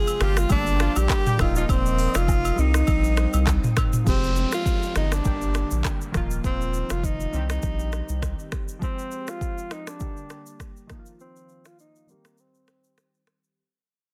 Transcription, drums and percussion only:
0.07 high agogo medium
0.07 shaker medium
0.21 finger snap medium
0.21 cross-stick loud
0.21 shaker medium
0.37 finger snap medium
0.37 cross-stick loud
0.37 shaker loud
0.49 kick loud
0.49 high agogo medium
0.49 shaker medium
0.66 shaker soft
0.80 finger snap medium
0.80 cross-stick loud
0.80 shaker medium
0.96 high agogo medium
0.96 shaker loud
1.09 finger snap medium
1.09 kick medium
1.09 cross-stick loud
1.09 clap loud
1.09 shaker medium
1.26 mid tom loud
1.26 shaker medium
1.39 finger snap medium
1.39 kick loud
1.39 cross-stick loud
1.39 high agogo medium
1.39 shaker soft
1.56 shaker medium
1.69 kick loud
1.69 high agogo medium
1.69 shaker medium
1.86 shaker medium
1.98 open hi-hat medium
1.98 shaker medium
2.15 finger snap medium
2.15 cross-stick medium
2.15 high agogo medium
2.15 shaker loud
2.28 kick loud
2.28 low woodblock medium
2.28 shaker medium
2.45 high agogo medium
2.45 shaker medium
2.58 shaker medium
2.74 finger snap medium
2.74 cross-stick loud
2.74 shaker loud
2.87 kick loud
2.87 high agogo medium
2.87 shaker medium
3.04 shaker soft
3.17 finger snap medium
3.17 cross-stick medium
3.17 shaker medium
3.33 high agogo medium
3.33 shaker loud
3.47 finger snap medium
3.47 kick medium
3.47 cross-stick loud
3.47 clap loud
3.47 shaker medium
3.64 mid tom loud
3.64 shaker medium
3.77 finger snap medium
3.77 kick medium
3.77 cross-stick loud
3.77 mid tom medium
3.77 high agogo medium
3.77 shaker medium
3.93 mid tom loud
3.93 shaker medium
4.07 kick loud
4.07 shaker medium
4.23 shaker medium
4.36 shaker medium
4.52 finger snap medium
4.52 cross-stick medium
4.52 shaker loud
4.66 kick loud
4.66 shaker medium
4.83 shaker medium
4.96 finger snap medium
4.96 cross-stick medium
4.96 shaker medium
5.12 finger snap medium
5.12 cross-stick loud
5.12 shaker loud
5.25 kick loud
5.25 shaker medium
5.41 shaker soft
5.54 finger snap medium
5.54 cross-stick medium
5.54 shaker medium
5.71 shaker loud
5.85 finger snap medium
5.85 kick medium
5.85 cross-stick loud
5.85 clap loud
5.85 shaker medium
6.01 shaker soft
6.14 finger snap medium
6.14 kick medium
6.14 cross-stick medium
6.14 shaker soft
6.31 shaker medium
6.44 kick loud
6.44 shaker medium
6.61 shaker medium
6.74 shaker medium
6.90 finger snap medium
6.90 cross-stick medium
6.90 shaker loud
7.03 kick medium
7.03 shaker medium
7.20 shaker medium
7.33 shaker medium
7.50 finger snap medium
7.50 cross-stick loud
7.50 shaker loud
7.62 kick loud
7.62 shaker medium
7.79 shaker soft
7.92 finger snap medium
7.92 cross-stick medium
7.92 shaker medium
8.09 shaker loud
8.22 finger snap medium
8.22 kick medium
8.22 cross-stick medium
8.22 shaker medium
8.39 shaker soft
8.52 finger snap medium
8.52 kick medium
8.52 cross-stick medium
8.52 shaker soft
8.68 shaker medium
8.82 kick loud
8.82 shaker medium
8.99 shaker medium
9.11 shaker medium
9.28 finger snap medium
9.28 cross-stick medium
9.28 shaker loud
9.41 kick medium
9.41 shaker medium
9.58 shaker medium
9.71 finger snap medium
9.71 cross-stick medium
9.71 shaker medium
9.87 finger snap medium
9.87 cross-stick medium
9.87 shaker loud
10.00 kick loud
10.00 shaker medium
10.17 shaker soft
10.30 finger snap medium
10.30 cross-stick medium
10.30 shaker medium
10.46 shaker medium
10.60 finger snap medium
10.60 kick medium
10.60 cross-stick medium
10.60 shaker medium
10.77 shaker soft
10.90 finger snap medium
10.90 kick medium
10.90 cross-stick medium
10.90 shaker soft
11.06 shaker medium
11.20 shaker medium
11.36 shaker medium
11.49 shaker medium
11.65 finger snap medium
11.65 cross-stick medium
11.65 shaker loud
11.79 shaker medium
11.96 shaker medium
12.09 shaker soft
12.25 finger snap medium
12.25 cross-stick loud
12.25 shaker medium
12.38 shaker medium
12.55 shaker soft
12.67 finger snap medium
12.67 cross-stick medium
12.67 shaker medium
12.84 shaker loud
12.98 finger snap medium
12.98 cross-stick medium
12.98 shaker medium
13.14 shaker soft
13.27 finger snap medium
13.27 cross-stick medium
13.27 shaker soft
13.44 shaker medium

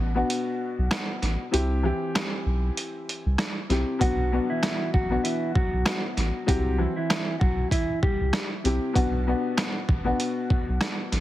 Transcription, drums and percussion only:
0.30 closed hi-hat loud
0.91 cross-stick medium
0.91 snare loud
0.91 closed hi-hat medium
1.22 snare soft
1.22 closed hi-hat soft
1.54 closed hi-hat loud
2.15 cross-stick medium
2.15 snare loud
2.15 closed hi-hat medium
2.77 closed hi-hat loud
3.09 closed hi-hat medium
3.38 cross-stick medium
3.38 snare loud
3.38 closed hi-hat medium
3.70 snare soft
3.70 closed hi-hat soft
4.01 kick loud
4.01 closed hi-hat loud
4.63 cross-stick medium
4.63 snare loud
4.63 closed hi-hat medium
4.94 kick medium
5.25 closed hi-hat medium
5.55 kick loud
5.86 cross-stick medium
5.86 snare loud
5.86 closed hi-hat medium
6.17 snare soft
6.17 closed hi-hat medium
6.48 kick loud
6.48 closed hi-hat loud
7.10 cross-stick medium
7.10 snare loud
7.10 closed hi-hat medium
7.41 kick loud
7.71 kick medium
7.71 closed hi-hat loud
8.03 kick loud
8.33 cross-stick medium
8.33 snare loud
8.33 closed hi-hat medium
8.65 closed hi-hat medium
8.96 kick loud
8.96 closed hi-hat loud
9.57 cross-stick medium
9.57 snare loud
9.57 closed hi-hat medium
9.89 kick medium
10.20 closed hi-hat medium
10.50 kick loud
10.81 cross-stick medium
10.81 snare loud
10.81 closed hi-hat medium
11.12 snare soft
11.12 closed hi-hat soft

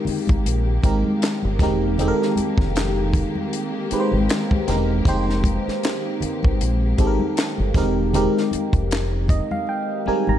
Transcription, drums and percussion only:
0.05 open hi-hat soft
0.05 muted conga soft
0.05 low conga medium
0.27 kick medium
0.27 closed hi-hat soft
0.27 high conga medium
0.44 closed hi-hat medium
0.44 muted conga soft
0.82 kick medium
0.82 closed hi-hat medium
0.82 muted conga soft
1.04 high conga medium
1.22 snare loud
1.22 clap medium
1.22 closed hi-hat medium
1.43 high conga medium
1.59 kick loud
1.59 snare soft
1.59 closed hi-hat medium
1.59 muted conga soft
1.59 low conga medium
1.98 closed hi-hat medium
1.98 muted conga soft
1.98 low conga medium
2.22 snare soft
2.36 closed hi-hat medium
2.36 muted conga soft
2.36 high conga medium
2.58 kick loud
2.58 snare soft
2.76 snare loud
2.76 clap loud
2.76 closed hi-hat medium
2.76 muted conga soft
3.13 kick loud
3.13 closed hi-hat medium
3.13 muted conga soft
3.13 low conga medium
3.35 high conga medium
3.53 closed hi-hat medium
3.91 closed hi-hat medium
4.12 high conga medium
4.29 snare loud
4.29 clap medium
4.29 closed hi-hat medium
4.29 muted conga soft
4.51 kick loud
4.51 high conga medium
4.68 snare soft
4.68 closed hi-hat medium
4.68 low conga medium
5.05 kick loud
5.05 closed hi-hat medium
5.05 muted conga soft
5.05 low conga medium
5.30 snare soft
5.44 kick medium
5.44 closed hi-hat medium
5.44 muted conga soft
5.44 high conga medium
5.68 snare soft
5.83 snare loud
5.83 clap medium
5.83 closed hi-hat medium
5.83 muted conga soft
6.20 closed hi-hat medium
6.20 muted conga soft
6.20 low conga medium
6.43 kick loud
6.43 high conga medium
6.61 closed hi-hat medium
6.98 kick medium
6.98 closed hi-hat medium
6.98 muted conga soft
7.19 high conga medium
7.37 snare loud
7.37 clap medium
7.37 closed hi-hat medium
7.58 high conga medium
7.74 kick medium
7.74 snare soft
7.74 closed hi-hat medium
7.74 muted conga soft
7.74 low conga medium
8.13 closed hi-hat medium
8.13 low conga medium
8.38 snare soft
8.51 closed hi-hat medium
8.51 muted conga soft
8.51 high conga medium
8.73 kick loud
8.73 closed hi-hat soft
8.91 snare loud
8.91 clap loud
8.91 closed hi-hat medium
8.91 muted conga soft
9.28 kick loud
9.28 closed hi-hat medium
9.28 muted conga soft
9.28 low conga medium
9.51 high conga medium
9.67 muted conga soft
10.06 muted conga soft
10.27 high conga medium

